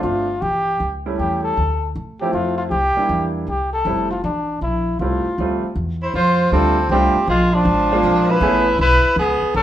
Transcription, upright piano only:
Already playing: A3 C4 D4 F4
1.06 G3 A3 C#4 E4
2.21 F3 A3 C4 E4
2.97 G3 A#3 D4 E4
3.86 G3 A3 C4 E4
5.01 G3 A3 C4 E4
5.40 G3 A3 C4 F4
6.52 G3 A3 C4 D4 F4
6.91 G3 A3 C4 D4 F4
7.92 G#3 A#3 C4 D4 F4
8.41 A3 B3 C#4 E4 G#4

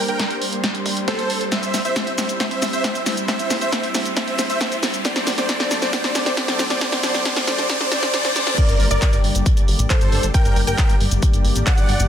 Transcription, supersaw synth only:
0.08 A#4 G5
1.08 A4 C5
1.52 C5 E5
1.85 C5 E5
2.40 C5 E5
2.73 C5 E5
3.28 C5 E5
3.61 C5 E5
4.17 C5 E5
4.50 C5 E5
5.05 C5 D5
5.38 C5 D5
5.49 C5 D5
5.82 C5 D5
5.93 C5 D5
6.26 C5 D5
6.37 C5 D5
6.70 C5 D5
6.81 C5 D5
7.03 C5 D5
7.25 C5 D5
7.47 C5 D5
7.70 C5 D5
7.92 C5 D5
8.14 C5 D5
8.36 C5 D5
8.58 A#4 D5
8.91 A#4 D5
9.90 A4 C5
10.34 A#4 G5
10.67 A#4 G5
11.67 D5 F#5

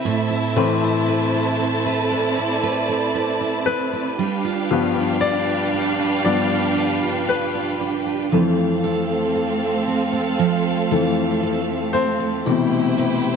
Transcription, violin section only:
0.05 E4 C5 A5
4.19 D4 B4 G5
8.33 C4 A4 F5
12.46 E4 C5 G5

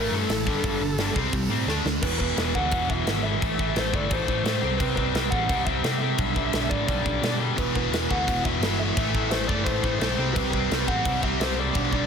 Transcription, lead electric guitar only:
Already playing: A#4
0.16 A4
2.02 B4
2.19 B4
2.55 F#5
2.90 E5
3.23 E5
3.76 C5
3.95 D5
4.13 C5
4.45 C5
4.78 B4
4.96 B4
5.30 F#5
5.65 E5
5.99 E5
6.70 D5
6.87 D5
7.59 B4
7.76 B4
8.11 F#5
8.45 E5
8.80 E5
9.31 C5
9.47 D5
9.64 C5
9.99 C5
10.34 B4
10.51 B4
10.88 F#5
11.23 E5
11.40 C5
11.59 D5
11.93 D5

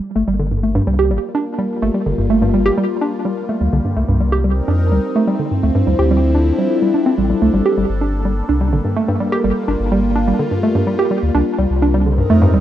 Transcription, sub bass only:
0.16 G1
0.28 G1
0.87 C2
1.11 G1
1.82 G1
2.06 G1
2.18 G1
3.61 D2
3.73 C2
3.97 C2
4.09 C2
4.68 F2
4.92 C2
5.63 D2
5.87 D2
5.99 D2
7.18 A1
7.42 C2
7.54 G1
7.78 G1
7.89 G1
8.49 C2
8.73 G1
9.44 G1
9.68 G1
9.80 G1
11.23 D2
11.35 C2
11.59 C2
11.70 C2
12.30 F2
12.54 C2

